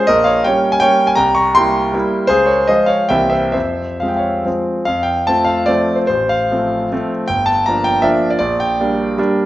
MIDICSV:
0, 0, Header, 1, 2, 480
1, 0, Start_track
1, 0, Key_signature, -4, "minor"
1, 0, Tempo, 373599
1, 94, Time_signature, 3, 2, 24, 8
1, 3456, Tempo, 428878
1, 4416, Tempo, 460123
1, 5376, Tempo, 413223
1, 5864, Key_signature, -1, "major"
1, 7776, Tempo, 375469
1, 11511, End_track
2, 0, Start_track
2, 0, Title_t, "Grand piano"
2, 0, Program_c, 0, 0
2, 90, Note_on_c, 0, 75, 102
2, 109, Note_on_c, 0, 34, 60
2, 111, Note_on_c, 0, 70, 75
2, 309, Note_on_c, 0, 77, 78
2, 319, Note_off_c, 0, 70, 0
2, 319, Control_c, 0, 64, 127
2, 324, Note_off_c, 0, 75, 0
2, 326, Note_on_c, 0, 73, 62
2, 550, Note_off_c, 0, 73, 0
2, 559, Note_off_c, 0, 77, 0
2, 561, Note_off_c, 0, 34, 0
2, 570, Note_on_c, 0, 79, 85
2, 585, Control_c, 0, 64, 0
2, 586, Note_on_c, 0, 55, 43
2, 590, Note_on_c, 0, 73, 72
2, 601, Note_on_c, 0, 58, 46
2, 611, Note_on_c, 0, 61, 48
2, 919, Note_off_c, 0, 73, 0
2, 925, Note_on_c, 0, 80, 94
2, 934, Note_off_c, 0, 79, 0
2, 1013, Note_off_c, 0, 55, 0
2, 1021, Note_off_c, 0, 58, 0
2, 1026, Note_on_c, 0, 79, 110
2, 1027, Note_off_c, 0, 61, 0
2, 1047, Note_off_c, 0, 80, 0
2, 1050, Note_on_c, 0, 55, 51
2, 1053, Note_on_c, 0, 73, 78
2, 1055, Note_on_c, 0, 58, 51
2, 1063, Note_on_c, 0, 61, 56
2, 1376, Note_on_c, 0, 80, 86
2, 1378, Note_off_c, 0, 73, 0
2, 1389, Note_off_c, 0, 79, 0
2, 1470, Note_off_c, 0, 55, 0
2, 1473, Note_off_c, 0, 58, 0
2, 1477, Note_off_c, 0, 61, 0
2, 1484, Note_on_c, 0, 82, 101
2, 1501, Note_on_c, 0, 79, 79
2, 1504, Note_off_c, 0, 80, 0
2, 1507, Note_on_c, 0, 36, 58
2, 1728, Note_off_c, 0, 79, 0
2, 1730, Note_on_c, 0, 85, 95
2, 1733, Note_off_c, 0, 82, 0
2, 1753, Note_on_c, 0, 82, 71
2, 1770, Control_c, 0, 64, 127
2, 1983, Note_off_c, 0, 36, 0
2, 1985, Note_off_c, 0, 82, 0
2, 1988, Note_on_c, 0, 84, 104
2, 1992, Note_off_c, 0, 85, 0
2, 2000, Note_on_c, 0, 79, 70
2, 2013, Note_on_c, 0, 58, 44
2, 2015, Note_on_c, 0, 55, 47
2, 2022, Note_on_c, 0, 64, 46
2, 2454, Note_off_c, 0, 58, 0
2, 2455, Note_off_c, 0, 55, 0
2, 2459, Note_off_c, 0, 64, 0
2, 2480, Note_on_c, 0, 55, 52
2, 2495, Note_on_c, 0, 58, 49
2, 2497, Note_on_c, 0, 64, 51
2, 2516, Control_c, 0, 64, 0
2, 2905, Note_off_c, 0, 55, 0
2, 2908, Note_off_c, 0, 79, 0
2, 2913, Note_off_c, 0, 58, 0
2, 2914, Note_off_c, 0, 64, 0
2, 2922, Note_on_c, 0, 72, 103
2, 2941, Note_on_c, 0, 68, 80
2, 2943, Note_on_c, 0, 37, 55
2, 2954, Note_off_c, 0, 84, 0
2, 3156, Note_on_c, 0, 73, 70
2, 3167, Note_on_c, 0, 70, 51
2, 3172, Note_off_c, 0, 68, 0
2, 3180, Note_off_c, 0, 72, 0
2, 3191, Control_c, 0, 64, 127
2, 3421, Note_off_c, 0, 70, 0
2, 3432, Note_off_c, 0, 37, 0
2, 3435, Note_off_c, 0, 73, 0
2, 3437, Note_on_c, 0, 75, 84
2, 3450, Note_on_c, 0, 72, 69
2, 3453, Note_on_c, 0, 53, 41
2, 3453, Note_on_c, 0, 56, 39
2, 3458, Note_on_c, 0, 65, 48
2, 3473, Control_c, 0, 64, 0
2, 3650, Note_on_c, 0, 77, 77
2, 3667, Note_on_c, 0, 73, 60
2, 3670, Note_off_c, 0, 72, 0
2, 3680, Note_off_c, 0, 75, 0
2, 3878, Note_off_c, 0, 53, 0
2, 3878, Note_off_c, 0, 56, 0
2, 3880, Note_off_c, 0, 65, 0
2, 3895, Note_off_c, 0, 73, 0
2, 3900, Note_on_c, 0, 79, 88
2, 3904, Note_off_c, 0, 77, 0
2, 3914, Note_on_c, 0, 58, 40
2, 3916, Note_on_c, 0, 52, 39
2, 3916, Note_on_c, 0, 76, 68
2, 3918, Note_on_c, 0, 36, 60
2, 3930, Note_on_c, 0, 60, 41
2, 4118, Note_off_c, 0, 76, 0
2, 4135, Note_on_c, 0, 76, 72
2, 4153, Note_off_c, 0, 79, 0
2, 4155, Note_on_c, 0, 72, 50
2, 4159, Control_c, 0, 64, 127
2, 4367, Note_off_c, 0, 58, 0
2, 4368, Note_off_c, 0, 52, 0
2, 4370, Note_off_c, 0, 76, 0
2, 4375, Note_off_c, 0, 60, 0
2, 4383, Note_off_c, 0, 72, 0
2, 4386, Note_on_c, 0, 76, 66
2, 4399, Note_off_c, 0, 36, 0
2, 4400, Note_on_c, 0, 72, 55
2, 4402, Note_on_c, 0, 41, 44
2, 4434, Control_c, 0, 64, 0
2, 4684, Control_c, 0, 64, 127
2, 4865, Note_off_c, 0, 72, 0
2, 4886, Note_off_c, 0, 41, 0
2, 4888, Note_on_c, 0, 77, 56
2, 4894, Note_off_c, 0, 76, 0
2, 4911, Note_on_c, 0, 53, 34
2, 4911, Note_on_c, 0, 56, 34
2, 4921, Note_on_c, 0, 60, 37
2, 4974, Note_on_c, 0, 79, 48
2, 4986, Note_off_c, 0, 77, 0
2, 5060, Note_on_c, 0, 77, 54
2, 5071, Note_off_c, 0, 79, 0
2, 5079, Note_on_c, 0, 73, 46
2, 5336, Note_off_c, 0, 53, 0
2, 5336, Note_off_c, 0, 56, 0
2, 5341, Note_off_c, 0, 60, 0
2, 5354, Note_off_c, 0, 73, 0
2, 5359, Note_on_c, 0, 53, 33
2, 5361, Note_on_c, 0, 56, 35
2, 5365, Note_off_c, 0, 77, 0
2, 5372, Note_on_c, 0, 60, 41
2, 5389, Control_c, 0, 64, 0
2, 5808, Note_off_c, 0, 53, 0
2, 5809, Note_off_c, 0, 56, 0
2, 5815, Note_off_c, 0, 60, 0
2, 5824, Note_on_c, 0, 77, 84
2, 5845, Note_on_c, 0, 41, 51
2, 6028, Note_on_c, 0, 79, 76
2, 6075, Note_off_c, 0, 77, 0
2, 6113, Control_c, 0, 64, 127
2, 6307, Note_off_c, 0, 79, 0
2, 6307, Note_on_c, 0, 81, 89
2, 6317, Note_off_c, 0, 41, 0
2, 6319, Note_on_c, 0, 53, 37
2, 6320, Note_on_c, 0, 57, 39
2, 6329, Note_on_c, 0, 60, 41
2, 6512, Note_on_c, 0, 77, 81
2, 6563, Note_off_c, 0, 81, 0
2, 6749, Note_off_c, 0, 53, 0
2, 6750, Note_off_c, 0, 57, 0
2, 6754, Note_off_c, 0, 60, 0
2, 6759, Note_on_c, 0, 74, 85
2, 6773, Note_off_c, 0, 77, 0
2, 6779, Note_on_c, 0, 57, 50
2, 6781, Note_on_c, 0, 53, 50
2, 6782, Note_on_c, 0, 60, 52
2, 6816, Control_c, 0, 64, 0
2, 7106, Note_on_c, 0, 72, 51
2, 7125, Note_off_c, 0, 74, 0
2, 7213, Note_off_c, 0, 57, 0
2, 7214, Note_off_c, 0, 53, 0
2, 7215, Note_off_c, 0, 60, 0
2, 7222, Note_off_c, 0, 72, 0
2, 7239, Note_on_c, 0, 72, 80
2, 7265, Note_on_c, 0, 33, 50
2, 7496, Note_on_c, 0, 77, 78
2, 7511, Note_off_c, 0, 72, 0
2, 7523, Control_c, 0, 64, 127
2, 7754, Note_on_c, 0, 53, 40
2, 7757, Note_off_c, 0, 33, 0
2, 7760, Note_on_c, 0, 57, 37
2, 7763, Note_on_c, 0, 60, 42
2, 8213, Note_off_c, 0, 53, 0
2, 8216, Note_off_c, 0, 57, 0
2, 8218, Note_off_c, 0, 60, 0
2, 8273, Note_on_c, 0, 57, 53
2, 8278, Note_on_c, 0, 53, 48
2, 8279, Note_on_c, 0, 60, 55
2, 8285, Control_c, 0, 64, 0
2, 8491, Note_off_c, 0, 77, 0
2, 8697, Note_off_c, 0, 57, 0
2, 8699, Note_off_c, 0, 53, 0
2, 8700, Note_off_c, 0, 60, 0
2, 8725, Note_on_c, 0, 79, 94
2, 8744, Note_on_c, 0, 31, 54
2, 8958, Note_on_c, 0, 81, 86
2, 8979, Note_off_c, 0, 79, 0
2, 9019, Control_c, 0, 64, 127
2, 9215, Note_on_c, 0, 82, 87
2, 9222, Note_off_c, 0, 81, 0
2, 9223, Note_off_c, 0, 31, 0
2, 9238, Note_on_c, 0, 53, 42
2, 9245, Note_on_c, 0, 58, 38
2, 9247, Note_on_c, 0, 62, 43
2, 9449, Note_on_c, 0, 79, 91
2, 9464, Note_off_c, 0, 82, 0
2, 9652, Note_off_c, 0, 53, 0
2, 9656, Note_off_c, 0, 58, 0
2, 9657, Note_off_c, 0, 62, 0
2, 9676, Note_on_c, 0, 76, 88
2, 9685, Note_off_c, 0, 79, 0
2, 9691, Note_on_c, 0, 53, 58
2, 9694, Note_on_c, 0, 58, 56
2, 9695, Note_on_c, 0, 62, 64
2, 9712, Control_c, 0, 64, 0
2, 10032, Note_off_c, 0, 76, 0
2, 10038, Note_on_c, 0, 74, 64
2, 10120, Note_off_c, 0, 53, 0
2, 10121, Note_off_c, 0, 58, 0
2, 10122, Note_off_c, 0, 62, 0
2, 10126, Note_off_c, 0, 74, 0
2, 10145, Note_on_c, 0, 74, 83
2, 10161, Note_on_c, 0, 34, 60
2, 10414, Note_off_c, 0, 74, 0
2, 10417, Note_on_c, 0, 79, 84
2, 10427, Control_c, 0, 64, 127
2, 10656, Note_off_c, 0, 34, 0
2, 10674, Note_on_c, 0, 55, 42
2, 10685, Note_on_c, 0, 58, 44
2, 10687, Note_on_c, 0, 62, 48
2, 11113, Note_off_c, 0, 55, 0
2, 11119, Note_off_c, 0, 58, 0
2, 11121, Note_off_c, 0, 62, 0
2, 11157, Note_on_c, 0, 55, 56
2, 11167, Note_on_c, 0, 58, 54
2, 11176, Note_on_c, 0, 62, 65
2, 11181, Control_c, 0, 64, 0
2, 11384, Note_off_c, 0, 79, 0
2, 11511, Note_off_c, 0, 55, 0
2, 11511, Note_off_c, 0, 58, 0
2, 11511, Note_off_c, 0, 62, 0
2, 11511, End_track
0, 0, End_of_file